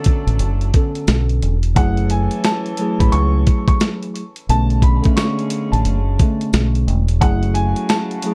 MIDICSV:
0, 0, Header, 1, 6, 480
1, 0, Start_track
1, 0, Key_signature, 3, "minor"
1, 0, Tempo, 681818
1, 1241, Time_signature, 4, 2, 24, 8
1, 5871, End_track
2, 0, Start_track
2, 0, Title_t, "Upright piano"
2, 0, Program_c, 0, 0
2, 1242, Note_on_c, 0, 78, 113
2, 1457, Note_off_c, 0, 78, 0
2, 1482, Note_on_c, 0, 80, 81
2, 1698, Note_off_c, 0, 80, 0
2, 1726, Note_on_c, 0, 81, 91
2, 2090, Note_off_c, 0, 81, 0
2, 2109, Note_on_c, 0, 83, 77
2, 2191, Note_off_c, 0, 83, 0
2, 2197, Note_on_c, 0, 85, 106
2, 2565, Note_off_c, 0, 85, 0
2, 2591, Note_on_c, 0, 85, 85
2, 2672, Note_off_c, 0, 85, 0
2, 3167, Note_on_c, 0, 81, 104
2, 3380, Note_off_c, 0, 81, 0
2, 3402, Note_on_c, 0, 83, 83
2, 3617, Note_off_c, 0, 83, 0
2, 3636, Note_on_c, 0, 85, 79
2, 4004, Note_off_c, 0, 85, 0
2, 4025, Note_on_c, 0, 81, 80
2, 4570, Note_off_c, 0, 81, 0
2, 5077, Note_on_c, 0, 78, 110
2, 5295, Note_off_c, 0, 78, 0
2, 5310, Note_on_c, 0, 80, 97
2, 5531, Note_off_c, 0, 80, 0
2, 5556, Note_on_c, 0, 81, 98
2, 5871, Note_off_c, 0, 81, 0
2, 5871, End_track
3, 0, Start_track
3, 0, Title_t, "Tine electric piano"
3, 0, Program_c, 1, 4
3, 0, Note_on_c, 1, 50, 92
3, 0, Note_on_c, 1, 59, 92
3, 0, Note_on_c, 1, 61, 85
3, 0, Note_on_c, 1, 69, 106
3, 347, Note_off_c, 1, 50, 0
3, 351, Note_off_c, 1, 59, 0
3, 354, Note_off_c, 1, 61, 0
3, 357, Note_off_c, 1, 69, 0
3, 518, Note_on_c, 1, 50, 94
3, 525, Note_on_c, 1, 59, 85
3, 531, Note_on_c, 1, 61, 84
3, 537, Note_on_c, 1, 69, 100
3, 1089, Note_off_c, 1, 50, 0
3, 1093, Note_off_c, 1, 59, 0
3, 1096, Note_off_c, 1, 61, 0
3, 1099, Note_off_c, 1, 69, 0
3, 1229, Note_on_c, 1, 54, 87
3, 1235, Note_on_c, 1, 57, 86
3, 1241, Note_on_c, 1, 64, 92
3, 1249, Note_on_c, 1, 68, 104
3, 1911, Note_off_c, 1, 54, 0
3, 1914, Note_off_c, 1, 57, 0
3, 1918, Note_off_c, 1, 64, 0
3, 1921, Note_off_c, 1, 68, 0
3, 1960, Note_on_c, 1, 54, 97
3, 1967, Note_on_c, 1, 57, 89
3, 1973, Note_on_c, 1, 64, 81
3, 1979, Note_on_c, 1, 68, 100
3, 2962, Note_off_c, 1, 54, 0
3, 2966, Note_off_c, 1, 57, 0
3, 2969, Note_off_c, 1, 64, 0
3, 2972, Note_off_c, 1, 68, 0
3, 3163, Note_on_c, 1, 50, 93
3, 3169, Note_on_c, 1, 59, 92
3, 3176, Note_on_c, 1, 61, 84
3, 3182, Note_on_c, 1, 57, 96
3, 3516, Note_off_c, 1, 50, 0
3, 3519, Note_off_c, 1, 59, 0
3, 3522, Note_off_c, 1, 61, 0
3, 3525, Note_off_c, 1, 57, 0
3, 3530, Note_on_c, 1, 50, 93
3, 3537, Note_on_c, 1, 59, 89
3, 3543, Note_on_c, 1, 61, 85
3, 3549, Note_on_c, 1, 57, 101
3, 4188, Note_off_c, 1, 50, 0
3, 4192, Note_off_c, 1, 59, 0
3, 4195, Note_off_c, 1, 61, 0
3, 4198, Note_off_c, 1, 57, 0
3, 4358, Note_on_c, 1, 50, 99
3, 4364, Note_on_c, 1, 59, 86
3, 4370, Note_on_c, 1, 61, 86
3, 4377, Note_on_c, 1, 57, 103
3, 4929, Note_off_c, 1, 50, 0
3, 4932, Note_off_c, 1, 59, 0
3, 4935, Note_off_c, 1, 61, 0
3, 4939, Note_off_c, 1, 57, 0
3, 5068, Note_on_c, 1, 54, 88
3, 5074, Note_on_c, 1, 57, 84
3, 5081, Note_on_c, 1, 64, 96
3, 5087, Note_on_c, 1, 68, 104
3, 5751, Note_off_c, 1, 54, 0
3, 5754, Note_off_c, 1, 57, 0
3, 5758, Note_off_c, 1, 64, 0
3, 5761, Note_off_c, 1, 68, 0
3, 5799, Note_on_c, 1, 54, 95
3, 5805, Note_on_c, 1, 57, 93
3, 5812, Note_on_c, 1, 64, 83
3, 5818, Note_on_c, 1, 68, 103
3, 5871, Note_off_c, 1, 54, 0
3, 5871, Note_off_c, 1, 57, 0
3, 5871, Note_off_c, 1, 64, 0
3, 5871, Note_off_c, 1, 68, 0
3, 5871, End_track
4, 0, Start_track
4, 0, Title_t, "Horn section"
4, 0, Program_c, 2, 61
4, 0, Note_on_c, 2, 54, 85
4, 0, Note_on_c, 2, 57, 91
4, 0, Note_on_c, 2, 62, 84
4, 0, Note_on_c, 2, 69, 99
4, 972, Note_off_c, 2, 54, 0
4, 972, Note_off_c, 2, 57, 0
4, 972, Note_off_c, 2, 62, 0
4, 972, Note_off_c, 2, 69, 0
4, 1242, Note_on_c, 2, 52, 88
4, 1242, Note_on_c, 2, 57, 87
4, 1242, Note_on_c, 2, 61, 91
4, 1242, Note_on_c, 2, 69, 95
4, 2893, Note_off_c, 2, 52, 0
4, 2893, Note_off_c, 2, 57, 0
4, 2893, Note_off_c, 2, 61, 0
4, 2893, Note_off_c, 2, 69, 0
4, 3169, Note_on_c, 2, 49, 75
4, 3169, Note_on_c, 2, 50, 92
4, 3169, Note_on_c, 2, 56, 98
4, 3169, Note_on_c, 2, 61, 81
4, 4817, Note_off_c, 2, 49, 0
4, 4817, Note_off_c, 2, 50, 0
4, 4817, Note_off_c, 2, 56, 0
4, 4817, Note_off_c, 2, 61, 0
4, 5077, Note_on_c, 2, 54, 90
4, 5077, Note_on_c, 2, 57, 85
4, 5077, Note_on_c, 2, 66, 97
4, 5078, Note_on_c, 2, 49, 86
4, 5871, Note_off_c, 2, 49, 0
4, 5871, Note_off_c, 2, 54, 0
4, 5871, Note_off_c, 2, 57, 0
4, 5871, Note_off_c, 2, 66, 0
4, 5871, End_track
5, 0, Start_track
5, 0, Title_t, "Fingered electric bass"
5, 0, Program_c, 3, 33
5, 189, Note_on_c, 3, 33, 87
5, 272, Note_off_c, 3, 33, 0
5, 279, Note_on_c, 3, 30, 100
5, 499, Note_off_c, 3, 30, 0
5, 760, Note_on_c, 3, 35, 95
5, 979, Note_off_c, 3, 35, 0
5, 1001, Note_on_c, 3, 28, 94
5, 1240, Note_off_c, 3, 28, 0
5, 1240, Note_on_c, 3, 30, 111
5, 1602, Note_off_c, 3, 30, 0
5, 2114, Note_on_c, 3, 33, 95
5, 2195, Note_off_c, 3, 33, 0
5, 2203, Note_on_c, 3, 37, 101
5, 2421, Note_off_c, 3, 37, 0
5, 3162, Note_on_c, 3, 35, 101
5, 3523, Note_off_c, 3, 35, 0
5, 4031, Note_on_c, 3, 33, 91
5, 4113, Note_off_c, 3, 33, 0
5, 4121, Note_on_c, 3, 30, 102
5, 4340, Note_off_c, 3, 30, 0
5, 4601, Note_on_c, 3, 35, 97
5, 4820, Note_off_c, 3, 35, 0
5, 4839, Note_on_c, 3, 28, 100
5, 5080, Note_off_c, 3, 28, 0
5, 5080, Note_on_c, 3, 30, 107
5, 5442, Note_off_c, 3, 30, 0
5, 5871, End_track
6, 0, Start_track
6, 0, Title_t, "Drums"
6, 30, Note_on_c, 9, 42, 92
6, 43, Note_on_c, 9, 36, 100
6, 101, Note_off_c, 9, 42, 0
6, 114, Note_off_c, 9, 36, 0
6, 194, Note_on_c, 9, 42, 55
6, 264, Note_off_c, 9, 42, 0
6, 277, Note_on_c, 9, 42, 76
6, 347, Note_off_c, 9, 42, 0
6, 430, Note_on_c, 9, 42, 38
6, 501, Note_off_c, 9, 42, 0
6, 519, Note_on_c, 9, 42, 75
6, 521, Note_on_c, 9, 36, 93
6, 589, Note_off_c, 9, 42, 0
6, 592, Note_off_c, 9, 36, 0
6, 671, Note_on_c, 9, 42, 50
6, 741, Note_off_c, 9, 42, 0
6, 755, Note_on_c, 9, 54, 61
6, 759, Note_on_c, 9, 42, 83
6, 761, Note_on_c, 9, 38, 127
6, 825, Note_off_c, 9, 54, 0
6, 829, Note_off_c, 9, 42, 0
6, 831, Note_off_c, 9, 38, 0
6, 911, Note_on_c, 9, 42, 37
6, 982, Note_off_c, 9, 42, 0
6, 1003, Note_on_c, 9, 42, 66
6, 1073, Note_off_c, 9, 42, 0
6, 1147, Note_on_c, 9, 42, 57
6, 1217, Note_off_c, 9, 42, 0
6, 1240, Note_on_c, 9, 36, 113
6, 1241, Note_on_c, 9, 42, 96
6, 1311, Note_off_c, 9, 36, 0
6, 1311, Note_off_c, 9, 42, 0
6, 1389, Note_on_c, 9, 42, 36
6, 1460, Note_off_c, 9, 42, 0
6, 1476, Note_on_c, 9, 42, 81
6, 1547, Note_off_c, 9, 42, 0
6, 1626, Note_on_c, 9, 42, 50
6, 1696, Note_off_c, 9, 42, 0
6, 1716, Note_on_c, 9, 42, 84
6, 1722, Note_on_c, 9, 38, 116
6, 1722, Note_on_c, 9, 54, 73
6, 1786, Note_off_c, 9, 42, 0
6, 1792, Note_off_c, 9, 38, 0
6, 1792, Note_off_c, 9, 54, 0
6, 1871, Note_on_c, 9, 42, 38
6, 1942, Note_off_c, 9, 42, 0
6, 1952, Note_on_c, 9, 42, 91
6, 2023, Note_off_c, 9, 42, 0
6, 2115, Note_on_c, 9, 36, 92
6, 2116, Note_on_c, 9, 42, 58
6, 2185, Note_off_c, 9, 36, 0
6, 2187, Note_off_c, 9, 42, 0
6, 2199, Note_on_c, 9, 42, 77
6, 2270, Note_off_c, 9, 42, 0
6, 2441, Note_on_c, 9, 42, 75
6, 2443, Note_on_c, 9, 36, 95
6, 2511, Note_off_c, 9, 42, 0
6, 2514, Note_off_c, 9, 36, 0
6, 2588, Note_on_c, 9, 36, 91
6, 2593, Note_on_c, 9, 42, 50
6, 2659, Note_off_c, 9, 36, 0
6, 2663, Note_off_c, 9, 42, 0
6, 2676, Note_on_c, 9, 54, 60
6, 2681, Note_on_c, 9, 42, 84
6, 2683, Note_on_c, 9, 38, 124
6, 2746, Note_off_c, 9, 54, 0
6, 2751, Note_off_c, 9, 42, 0
6, 2753, Note_off_c, 9, 38, 0
6, 2834, Note_on_c, 9, 42, 37
6, 2904, Note_off_c, 9, 42, 0
6, 2925, Note_on_c, 9, 42, 65
6, 2996, Note_off_c, 9, 42, 0
6, 3070, Note_on_c, 9, 42, 54
6, 3140, Note_off_c, 9, 42, 0
6, 3164, Note_on_c, 9, 42, 95
6, 3235, Note_off_c, 9, 42, 0
6, 3311, Note_on_c, 9, 42, 37
6, 3381, Note_off_c, 9, 42, 0
6, 3394, Note_on_c, 9, 36, 104
6, 3397, Note_on_c, 9, 42, 80
6, 3465, Note_off_c, 9, 36, 0
6, 3468, Note_off_c, 9, 42, 0
6, 3546, Note_on_c, 9, 42, 51
6, 3558, Note_on_c, 9, 36, 89
6, 3616, Note_off_c, 9, 42, 0
6, 3628, Note_off_c, 9, 36, 0
6, 3638, Note_on_c, 9, 42, 85
6, 3642, Note_on_c, 9, 54, 72
6, 3643, Note_on_c, 9, 38, 117
6, 3708, Note_off_c, 9, 42, 0
6, 3712, Note_off_c, 9, 54, 0
6, 3714, Note_off_c, 9, 38, 0
6, 3793, Note_on_c, 9, 42, 37
6, 3863, Note_off_c, 9, 42, 0
6, 3873, Note_on_c, 9, 42, 93
6, 3944, Note_off_c, 9, 42, 0
6, 4036, Note_on_c, 9, 42, 55
6, 4107, Note_off_c, 9, 42, 0
6, 4119, Note_on_c, 9, 42, 76
6, 4190, Note_off_c, 9, 42, 0
6, 4361, Note_on_c, 9, 42, 77
6, 4362, Note_on_c, 9, 36, 94
6, 4431, Note_off_c, 9, 42, 0
6, 4433, Note_off_c, 9, 36, 0
6, 4513, Note_on_c, 9, 42, 50
6, 4583, Note_off_c, 9, 42, 0
6, 4596, Note_on_c, 9, 54, 59
6, 4601, Note_on_c, 9, 42, 80
6, 4603, Note_on_c, 9, 38, 127
6, 4667, Note_off_c, 9, 54, 0
6, 4672, Note_off_c, 9, 42, 0
6, 4674, Note_off_c, 9, 38, 0
6, 4753, Note_on_c, 9, 42, 38
6, 4824, Note_off_c, 9, 42, 0
6, 4845, Note_on_c, 9, 42, 64
6, 4915, Note_off_c, 9, 42, 0
6, 4988, Note_on_c, 9, 42, 56
6, 5058, Note_off_c, 9, 42, 0
6, 5080, Note_on_c, 9, 36, 107
6, 5082, Note_on_c, 9, 42, 100
6, 5150, Note_off_c, 9, 36, 0
6, 5152, Note_off_c, 9, 42, 0
6, 5229, Note_on_c, 9, 42, 39
6, 5299, Note_off_c, 9, 42, 0
6, 5315, Note_on_c, 9, 42, 82
6, 5386, Note_off_c, 9, 42, 0
6, 5465, Note_on_c, 9, 42, 50
6, 5535, Note_off_c, 9, 42, 0
6, 5555, Note_on_c, 9, 42, 83
6, 5560, Note_on_c, 9, 38, 113
6, 5561, Note_on_c, 9, 54, 73
6, 5625, Note_off_c, 9, 42, 0
6, 5631, Note_off_c, 9, 38, 0
6, 5632, Note_off_c, 9, 54, 0
6, 5710, Note_on_c, 9, 42, 37
6, 5780, Note_off_c, 9, 42, 0
6, 5790, Note_on_c, 9, 42, 92
6, 5860, Note_off_c, 9, 42, 0
6, 5871, End_track
0, 0, End_of_file